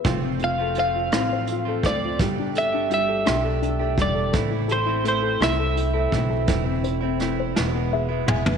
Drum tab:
HH |x-x-x-x-x-x-|x-x-x-x-x-x-|x-x-x-x-x-x-|x-x-x-------|
SD |------r-----|------r-----|------r-----|----r-o-----|
T2 |------------|------------|------------|----------o-|
FT |------------|------------|------------|-----------o|
BD |o---------o-|o---------o-|o---------o-|o-----------|